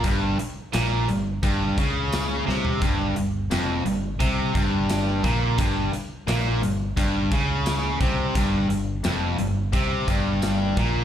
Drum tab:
HH |x-x-x-x-x-x-x---|x-x-x-x-x-x-x-x-|x-x-x-x-x-x-x-x-|x-x-x-x-x-x-x-x-|
TB |----x-------x---|----x-------x---|----x-------x---|----x-------x---|
SD |----o-------o-o-|----o-------o---|----o-------o---|----o-------o---|
FT |---------------o|----------------|----------------|----------------|
BD |o-------o-o-----|o-------o-o---o-|o-------o-o---o-|o-------o-o---o-|